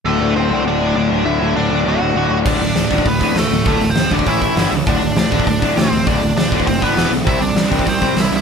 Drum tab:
CC |----------------|----------------|x---------------|----------------|
HH |----------------|----------------|--o-o-o-o-o-o-o-|o-o-o-o-o-o-o-o-|
SD |----------------|----------------|----o-------o---|----o-------o---|
BD |----------------|----------------|o-----ooo-o-----|o-----ooo-o-----|

CC |----------------|----------------|----------------|
HH |o-o-o-o-o-o-o-o-|o-o-o-o-o-o-o-o-|o-o-o-o-o-o-o-o-|
SD |----o-------o---|----o-------o---|----o-------o---|
BD |o-----ooo-o-----|o-----ooo-o-----|o-----ooo-o-----|